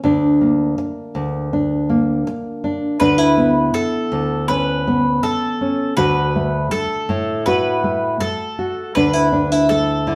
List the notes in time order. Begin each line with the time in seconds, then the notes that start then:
0.04 D2 D4
0.41 A#3
0.78 muted nylon-string guitar stroke
1.15 D2
1.53 D4
1.89 A#3
2.27 muted nylon-string guitar stroke
2.64 D4
3.00 D2 D4 B4
3.18 E4
3.37 B3
3.74 A4, muted nylon-string guitar stroke
4.12 D2
4.48 C#4 B4
4.87 B3
5.23 A4, muted nylon-string guitar stroke
5.61 C#4
5.97 D2 F#4 B4
6.36 A3
6.71 A4, muted nylon-string guitar stroke
7.09 A2
7.46 F#4 B4
7.84 A3
8.20 A4, muted nylon-string guitar stroke
8.59 F#4
8.95 D2 D4 B4
9.13 E4
9.32 D4
9.52 E4
9.69 A3 A4
10.07 D3 E4